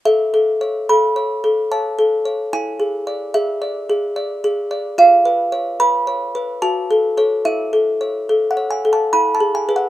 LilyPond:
\new Staff \with { instrumentName = "Music box" } { \time 3/4 \key a \major \tempo 4 = 73 << { e''4 b''4 a''4 | gis''4 e''4. r8 | eis''4 b''4 a''4 | e''4~ e''16 fis''16 gis''16 a''16 b''16 a''16 gis''16 fis''16 | } \\ { \tuplet 3/2 { a'8 a'8 cis''8 a'8 cis''8 a'8 cis''8 a'8 cis''8 } | \tuplet 3/2 { e'8 gis'8 d''8 gis'8 d''8 gis'8 d''8 gis'8 d''8 } | \tuplet 3/2 { eis'8 b'8 cis''8 b'8 cis''8 b'8 fis'8 a'8 <a' cis''>8 } | \tuplet 3/2 { e'8 a'8 cis''8 a'8 cis''8 a'8 e'8 gis'8 <gis' b'>8 } | } >> }